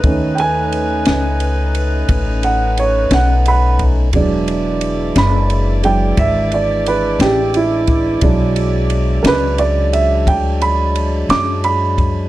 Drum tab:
RD |xxxxxxxxxxxx|xxxxxxxxxxxx|xxxxxxxxxxxx|
SD |---o-----o--|---o-----o--|---o-----o--|
BD |o-----o----o|o-----o----o|o-----o----o|